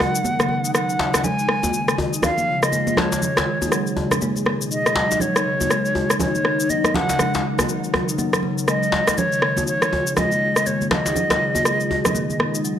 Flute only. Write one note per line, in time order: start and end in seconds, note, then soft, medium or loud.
0.00 0.71 F#5 loud
0.75 1.26 F#5 medium
1.24 1.97 G#5 medium
2.24 2.65 F5 loud
2.63 2.99 D#5 medium
2.97 3.97 C#5 medium
4.71 5.22 D#5 medium
5.21 6.20 C#5 medium
6.20 6.72 C#5 medium
6.70 6.96 D#5 medium
6.95 7.44 F#5 loud
8.68 9.19 D#5 loud
9.18 9.67 C#5 loud
9.68 10.14 C#5 loud
10.17 10.68 D#5 loud
10.66 10.91 C#5 medium
10.91 12.61 D#5 loud